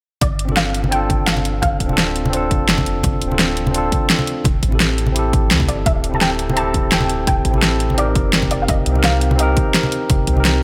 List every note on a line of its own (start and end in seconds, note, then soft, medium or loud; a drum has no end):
0.21 1.61 G1 medium
0.21 0.58 D5 loud
0.21 kick loud
0.21 closed hi-hat medium
0.21 high conga medium
0.39 closed hi-hat medium
0.45 0.87 C4 medium
0.45 0.90 D4 medium
0.45 high conga medium
0.50 0.91 F4 medium
0.50 0.92 A4 medium
0.56 0.93 F5 loud
0.56 snare loud
0.56 closed hi-hat medium
0.74 closed hi-hat medium
0.84 high conga medium
0.89 1.85 C4 medium
0.89 1.87 D4 medium
0.89 1.28 G5 loud
0.89 closed hi-hat medium
0.93 1.88 F4 medium
0.93 1.89 A4 loud
1.10 kick loud
1.10 closed hi-hat medium
1.10 high conga medium
1.27 1.61 F5 loud
1.27 snare loud
1.27 closed hi-hat medium
1.37 high conga medium
1.45 closed hi-hat medium
1.62 1.79 G1 loud
1.62 2.35 F5 loud
1.62 kick loud
1.62 closed hi-hat medium
1.62 high conga medium
1.80 2.52 D1 medium
1.80 kick medium
1.80 closed hi-hat medium
1.86 2.29 C4 medium
1.86 2.31 D4 medium
1.86 high conga medium
1.91 2.32 F4 medium
1.91 2.33 A4 medium
1.98 snare loud
1.98 closed hi-hat medium
2.16 closed hi-hat medium
2.26 high conga loud
2.30 3.26 C4 medium
2.30 3.28 D4 medium
2.30 2.82 C5 medium
2.30 closed hi-hat medium
2.34 3.29 F4 medium
2.34 3.30 A4 loud
2.51 3.03 F1 medium
2.51 kick loud
2.51 closed hi-hat medium
2.51 high conga medium
2.69 snare loud
2.69 closed hi-hat medium
2.78 kick medium
2.78 high conga medium
2.86 closed hi-hat medium
3.03 3.20 G1 medium
3.03 kick loud
3.03 closed hi-hat medium
3.03 high conga loud
3.22 3.91 D1 loud
3.22 closed hi-hat medium
3.28 3.70 C4 medium
3.28 3.72 D4 medium
3.28 high conga medium
3.32 3.73 F4 medium
3.32 3.74 A4 medium
3.39 snare loud
3.39 closed hi-hat medium
3.57 closed hi-hat medium
3.67 high conga loud
3.71 4.42 C4 loud
3.71 4.44 D4 medium
3.71 closed hi-hat medium
3.76 4.45 F4 medium
3.76 4.46 A4 loud
3.92 kick loud
3.92 closed hi-hat medium
3.92 high conga medium
4.10 snare loud
4.10 closed hi-hat medium
4.19 high conga medium
4.27 closed hi-hat medium
4.44 4.61 D1 loud
4.44 kick loud
4.44 closed hi-hat medium
4.44 high conga medium
4.63 5.53 A1 loud
4.63 kick medium
4.63 closed hi-hat medium
4.68 5.11 C4 medium
4.68 5.13 E4 medium
4.68 high conga medium
4.73 5.14 G4 medium
4.73 5.15 A4 medium
4.80 snare loud
4.80 closed hi-hat medium
4.98 closed hi-hat medium
5.07 high conga medium
5.12 6.08 C4 medium
5.12 6.10 E4 medium
5.12 closed hi-hat medium
5.17 6.11 G4 medium
5.17 6.13 A4 loud
5.33 kick loud
5.33 closed hi-hat medium
5.33 high conga medium
5.51 5.70 D2 medium
5.51 snare loud
5.51 closed hi-hat medium
5.60 kick medium
5.60 high conga medium
5.68 5.85 G1 medium
5.68 5.87 D5 medium
5.68 closed hi-hat medium
5.86 7.26 D1 medium
5.86 6.16 E5 loud
5.86 kick loud
5.86 closed hi-hat medium
5.86 high conga medium
6.04 closed hi-hat medium
6.09 6.52 C4 medium
6.09 6.54 E4 medium
6.14 6.55 G4 medium
6.14 6.56 A4 medium
6.14 6.21 A5 medium
6.14 high conga medium
6.21 6.58 G5 loud
6.21 snare loud
6.21 closed hi-hat medium
6.39 closed hi-hat medium
6.50 7.50 C4 loud
6.50 high conga medium
6.56 7.52 E4 medium
6.56 7.53 G4 medium
6.56 6.93 A5 loud
6.56 closed hi-hat medium
6.60 7.54 A4 loud
6.74 kick loud
6.74 closed hi-hat medium
6.74 high conga medium
6.92 7.26 G5 loud
6.92 snare loud
6.92 closed hi-hat medium
7.01 high conga medium
7.10 closed hi-hat medium
7.27 7.43 D1 loud
7.27 8.00 G5 loud
7.27 kick loud
7.27 closed hi-hat medium
7.27 high conga medium
7.45 8.17 A1 loud
7.45 kick medium
7.45 closed hi-hat medium
7.51 7.93 C4 medium
7.51 7.95 E4 medium
7.51 high conga medium
7.55 7.97 G4 medium
7.55 7.98 A4 medium
7.62 snare loud
7.62 closed hi-hat medium
7.80 closed hi-hat medium
7.90 high conga medium
7.95 8.91 C4 loud
7.95 8.93 D#4 medium
7.95 8.50 D5 loud
7.95 closed hi-hat medium
7.99 8.94 G4 medium
7.99 8.95 A#4 loud
8.15 8.67 F1 loud
8.15 kick loud
8.15 closed hi-hat medium
8.15 high conga medium
8.33 snare loud
8.33 closed hi-hat medium
8.42 kick medium
8.42 high conga medium
8.51 8.62 D5 medium
8.51 closed hi-hat medium
8.62 8.69 F5 medium
8.68 8.85 F1 loud
8.68 9.05 D#5 loud
8.68 kick loud
8.68 closed hi-hat medium
8.68 high conga medium
8.86 9.55 C2 loud
8.86 closed hi-hat medium
8.92 9.34 C4 medium
8.92 9.37 D#4 medium
8.92 high conga medium
8.96 9.38 G4 medium
8.96 9.39 A#4 medium
9.04 9.40 F5 loud
9.04 snare loud
9.04 closed hi-hat medium
9.21 closed hi-hat medium
9.31 high conga medium
9.36 10.32 C4 loud
9.36 10.34 D#4 medium
9.36 10.63 D#5 medium
9.36 closed hi-hat medium
9.40 10.35 G4 medium
9.40 10.36 A#4 loud
9.57 kick loud
9.57 closed hi-hat medium
9.57 high conga medium
9.74 snare loud
9.74 closed hi-hat medium
9.83 high conga medium
9.92 closed hi-hat medium
10.10 10.26 F1 loud
10.10 kick loud
10.10 closed hi-hat medium
10.10 high conga medium
10.27 10.63 C2 loud
10.27 kick medium
10.27 closed hi-hat medium
10.33 10.63 C4 medium
10.33 10.63 D#4 medium
10.33 high conga medium
10.38 10.63 G4 medium
10.38 10.63 A#4 medium
10.45 snare loud
10.45 closed hi-hat medium